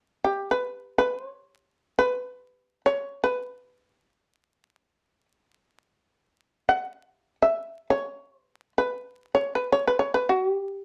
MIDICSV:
0, 0, Header, 1, 2, 480
1, 0, Start_track
1, 0, Tempo, 500000
1, 10413, End_track
2, 0, Start_track
2, 0, Title_t, "Shamisen"
2, 0, Program_c, 0, 106
2, 234, Note_on_c, 0, 67, 52
2, 463, Note_off_c, 0, 67, 0
2, 491, Note_on_c, 0, 71, 50
2, 932, Note_off_c, 0, 71, 0
2, 945, Note_on_c, 0, 71, 58
2, 1117, Note_off_c, 0, 71, 0
2, 1117, Note_on_c, 0, 72, 58
2, 1233, Note_off_c, 0, 72, 0
2, 1233, Note_on_c, 0, 73, 58
2, 1901, Note_off_c, 0, 73, 0
2, 1906, Note_on_c, 0, 71, 63
2, 2697, Note_off_c, 0, 71, 0
2, 2746, Note_on_c, 0, 73, 59
2, 3082, Note_off_c, 0, 73, 0
2, 3107, Note_on_c, 0, 71, 55
2, 5044, Note_off_c, 0, 71, 0
2, 6421, Note_on_c, 0, 78, 61
2, 7058, Note_off_c, 0, 78, 0
2, 7127, Note_on_c, 0, 76, 58
2, 7551, Note_off_c, 0, 76, 0
2, 7587, Note_on_c, 0, 73, 64
2, 8096, Note_off_c, 0, 73, 0
2, 8096, Note_on_c, 0, 71, 64
2, 8373, Note_off_c, 0, 71, 0
2, 8429, Note_on_c, 0, 71, 60
2, 8940, Note_off_c, 0, 71, 0
2, 8972, Note_on_c, 0, 73, 57
2, 9144, Note_off_c, 0, 73, 0
2, 9170, Note_on_c, 0, 71, 52
2, 9310, Note_off_c, 0, 71, 0
2, 9335, Note_on_c, 0, 73, 55
2, 9453, Note_off_c, 0, 73, 0
2, 9480, Note_on_c, 0, 71, 51
2, 9586, Note_off_c, 0, 71, 0
2, 9592, Note_on_c, 0, 73, 54
2, 9713, Note_off_c, 0, 73, 0
2, 9737, Note_on_c, 0, 71, 54
2, 9875, Note_off_c, 0, 71, 0
2, 9881, Note_on_c, 0, 66, 51
2, 10054, Note_off_c, 0, 66, 0
2, 10054, Note_on_c, 0, 67, 51
2, 10413, Note_off_c, 0, 67, 0
2, 10413, End_track
0, 0, End_of_file